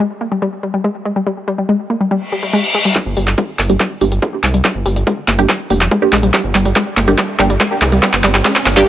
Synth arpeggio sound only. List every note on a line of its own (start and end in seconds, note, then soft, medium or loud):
0.21 0.25 A#3 medium
0.32 0.36 G3 medium
0.42 0.48 G3 medium
0.63 0.67 G3 medium
0.74 0.78 G3 medium
0.84 0.88 G#3 loud
1.05 1.09 G#3 loud
1.16 1.20 G3 medium
1.27 1.31 G3 medium
1.48 1.50 G3 loud
1.58 1.62 G3 medium
1.69 1.73 G#3 medium
1.90 1.94 A#3 medium
2.01 2.05 G3 medium
2.11 2.17 G3 medium
2.32 2.36 G3 medium
2.43 2.47 G3 medium
2.53 2.57 G#3 loud
2.75 2.78 G#3 medium
2.85 2.89 G3 medium
2.96 3.00 G3 medium
3.17 3.19 G3 loud
3.27 3.31 G3 medium
3.38 3.42 G#3 loud
3.59 3.63 A#3 medium
3.70 3.74 G3 medium
3.80 3.86 G3 medium
4.01 4.05 G3 medium
4.12 4.16 G3 medium
4.22 4.26 G#3 loud
4.43 4.47 G#3 loud
4.54 4.58 G3 medium
4.64 4.69 G3 medium
4.86 4.88 G3 loud
4.96 5.00 G3 medium
5.07 5.11 G#3 loud
5.28 5.32 A#3 medium
5.39 5.43 G3 medium
5.49 5.55 G3 medium
5.70 5.74 G3 medium
5.81 5.85 G3 medium
5.91 5.95 G#3 loud
6.13 6.17 G#3 loud
6.23 6.27 G3 medium
6.34 6.38 G3 medium
6.55 6.57 G3 loud
6.66 6.69 G3 medium
6.76 6.80 G#3 loud
6.97 7.01 A#3 medium
7.08 7.12 G3 medium
7.18 7.24 G3 medium
7.39 7.43 G3 medium
7.50 7.54 G3 medium
7.60 7.64 G#3 loud
7.82 7.86 G#3 loud
7.92 7.96 G3 medium
8.03 8.07 G3 medium
8.24 8.26 G3 loud
8.34 8.38 G3 medium
8.45 8.49 G#3 loud
8.66 8.70 A#3 medium
8.77 8.81 G3 medium